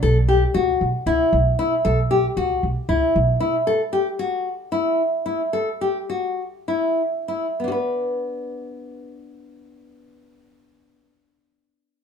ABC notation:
X:1
M:7/8
L:1/16
Q:1/4=108
K:Bm
V:1 name="Nylon-string guitar"
A2 G2 F4 E4 E2 | A2 G2 F4 E4 E2 | A2 G2 F4 E4 E2 | A2 G2 F4 E4 E2 |
[B,DFB]12- [B,DFB]2- | [B,DFB]12- [B,DFB]2 |]
V:2 name="Upright bass" clef=bass
B,,,4 C,,2 B,,, z C,, z B,,,2 z2 | B,,,4 C,,2 B,,, z C,, z B,,,2 z2 | z12 z2 | z12 z2 |
z12 z2 | z12 z2 |]